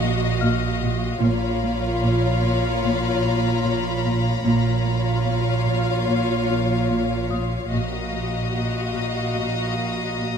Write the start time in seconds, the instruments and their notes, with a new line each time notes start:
Already playing: double bass section A#1, cello section A#2, viola section F#4, violin section D#5 F5 A#5, celesta C6
0.02 cello section A#3
0.41 cello section A#2, celesta F5 F6
0.82 cello section A#2
1.21 double bass section A#1, cello section A#2, viola section F4, violin section C#5 F5 A#5 B5
1.62 cello section A#3
2.03 cello section A#2
2.43 cello section A#2
2.84 cello section A#2
3.24 cello section A#3
3.64 cello section A#2
4.05 cello section A#2
4.44 double bass section A#1, cello section A#2, viola section F4, violin section C#5 F5
4.85 cello section A#3
5.25 cello section A#2
5.66 cello section A#2
6.07 cello section A#2
6.48 cello section A#3
6.89 cello section A#2
7.30 cello section A#2, celesta C#5 D#6
7.71 double bass section A#1, cello section A#2, viola section F#4, violin section D#5 F5 A#5 D#6
8.13 cello section A#3
8.53 cello section A#2
8.94 cello section A#2
9.35 cello section A#2, celesta A#6
9.78 cello section A#3
10.19 cello section A#2